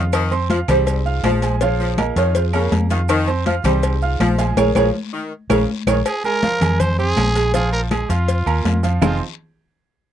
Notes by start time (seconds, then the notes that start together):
Already playing: F2 F4 F5 F6
0.12 D#3, cowbell, high conga, low agogo, long guiro, claves, maracas
0.31 C4 C5 C6, high conga, low agogo, maracas
0.50 F3 F4 F5 F6, cowbell, high conga, low timbale, short guiro, maracas
0.68 C2 G3 C4 D#4 G#4 C5 C6, cowbell, high conga, low conga, low agogo, short guiro, claves, maracas
0.86 cowbell, high conga, low agogo, long guiro, maracas
1.05 F4 F5 F6, high conga, maracas
1.23 A#1 F3 G#4 C5 F5, cowbell, high conga, low timbale, low agogo, short guiro, claves, maracas
1.42 G#3 G#4 G#5, cowbell, low agogo, short guiro, maracas
1.61 F3 F4 G#4 C#5 F5, cowbell, long guiro, maracas
1.79 F3, high conga, maracas
1.98 A#3 A#4 D#5 A#5, cowbell, high conga, low timbale, low agogo, short guiro, claves, maracas
2.16 F2 D#3 F4 C#5 F5 F6, cowbell, high conga, low agogo, short guiro, maracas
2.35 F4 G#4 C5, cowbell, high conga, long guiro, maracas
2.53 C#3 A#3 C#4 F4 A#4 A#5, high conga, low agogo, claves, maracas
2.72 F2, cowbell, high conga, low timbale, low agogo, short guiro, maracas
2.90 D#3 F4 F5 F6, cowbell, high conga, short guiro, maracas
3.09 D#3, cowbell, high conga, low agogo, long guiro, claves, maracas
3.28 C4 C5 C6, high conga, low agogo, maracas
3.46 F3 F4 F5 F6, cowbell, high conga, low timbale, short guiro, maracas
3.64 C2 G3 C4 D#4 G#4 C5 C6, cowbell, high conga, low conga, low agogo, short guiro, claves, maracas
3.83 cowbell, high conga, low agogo, long guiro, maracas
4.02 F4 F5 F6, high conga, maracas
4.20 A#1 F3, cowbell, high conga, low timbale, low agogo, short guiro, claves, maracas
4.38 G#3 G#4 F5 G#5, cowbell, low agogo, short guiro, maracas
4.57 A#1 G#4 A#4 C#5, cowbell, high conga, high timbale, long guiro, claves, maracas
4.75 A#1 F3 G#4 A#4 C#5, cowbell, high conga, high timbale, long guiro, claves, maracas
5.13 D#3
5.49 A#1 C#3 G#4 A#4 C#5, cowbell, high conga, high timbale, long guiro, claves, maracas
5.87 A#1 D#3 G#4 A#4 C#5, cowbell, high conga, high timbale, claves, maracas
6.06 G#4, cowbell, high conga, low agogo, long guiro, claves, maracas
6.24 G#3 G#4 A#4 G#5, high conga, low agogo, maracas
6.43 F3 F4 F5, cowbell, high conga, low timbale, short guiro, maracas
6.61 F2 G#3 G#4 G#5, cowbell, high conga, low conga, low agogo, short guiro, claves, maracas
6.80 C5, cowbell, high conga, low conga, low agogo, long guiro, maracas
6.99 C4 G#4 C5 C6, high conga, maracas
7.16 A#1, cowbell, high conga, low timbale, low agogo, short guiro, claves, maracas
7.35 G#3 G#4 G#5, cowbell, low agogo, short guiro, maracas
7.54 F3 F4 G#4 F5, cowbell, high conga, long guiro, maracas
7.73 A#4, high conga, maracas
7.91 G#3 G#4 G#5, cowbell, high conga, low timbale, low agogo, short guiro, claves, maracas
8.09 F2 F4 F5 F6, cowbell, high conga, low agogo, short guiro, maracas
8.28 cowbell, high conga, long guiro, maracas
8.46 D#2 A#3 A#4 A#5, high conga, low agogo, claves, maracas
8.65 F2, cowbell, high conga, low timbale, low agogo, short guiro, maracas
8.83 F3 F4 F5, cowbell, high conga, short guiro, maracas
9.01 F1 F3 C4 D#4 F4 G#4 C5, low bongo, low conga, low timbale, long guiro, claves, maracas